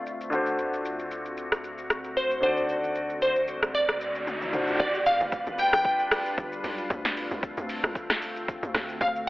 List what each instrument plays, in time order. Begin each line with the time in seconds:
Already playing: grand piano D3 D4 F4 C5, ambient pad D3 A3 C4 F4, synth pluck F5
0.06 shaker
0.21 shaker
0.30 grand piano D3 D4 F#4, ambient pad F#4, shaker
0.35 grand piano C5
0.46 shaker
0.59 sub bass D2, shaker
0.74 shaker
0.85 shaker
0.99 shaker
1.11 shaker
1.26 shaker
1.37 shaker
1.52 cross-stick, shaker
1.64 shaker
1.78 shaker
1.90 cross-stick, shaker
2.04 shaker
2.17 synth pluck C5, shaker
2.31 shaker
2.40 grand piano D3 D4 F#4, synth pluck C5, shaker
2.45 grand piano D5
2.57 shaker
2.69 riser, shaker
2.84 shaker
2.95 shaker
3.10 shaker
3.22 synth pluck C5, shaker
3.36 shaker
3.48 shaker
3.63 cross-stick, shaker
3.75 synth pluck D5, shaker
3.89 cross-stick, shaker
4.01 shaker
4.15 shaker
4.27 high tom, shaker
4.41 mid tom, shaker
4.52 grand piano D3 D4 F#4 C5, mid tom, shaker
4.67 floor tom, shaker
4.80 log drum bass G1, ambient pad G3 D4 F4 B4, synth pluck D5, kick, shaker
4.95 shaker
5.06 synth pluck F5, open hi-hat, shaker
5.20 log drum bass F1, shaker
5.32 kick, shaker
5.47 log drum bass G1, shaker
5.58 synth pluck G5, open hi-hat, shaker
5.73 log drum bass G1, synth pluck G5, cross-stick, shaker
5.85 kick, shaker
5.99 shaker
6.11 cross-stick, open hi-hat, shaker
6.26 shaker
6.38 log drum bass G1, kick, shaker
6.52 shaker
6.64 log drum bass B1, open hi-hat, shaker
6.78 shaker
6.90 log drum bass D2, ambient pad D3 A3 C4, kick, shaker
7.05 snare, shaker
7.17 open hi-hat, shaker
7.31 log drum bass C2, shaker
7.43 kick, shaker
7.57 log drum bass D2, shaker
7.69 open hi-hat, shaker
7.83 log drum bass C2, cross-stick, shaker
7.95 kick, shaker
8.10 cross-stick, snare, shaker
8.22 open hi-hat, shaker
8.36 shaker
8.48 kick, shaker
8.63 log drum bass D2, shaker
8.74 log drum bass D2, ambient pad F#4, cross-stick, snare, open hi-hat, shaker
8.89 shaker
9.01 log drum bass D2, synth pluck F5, kick, shaker
9.16 shaker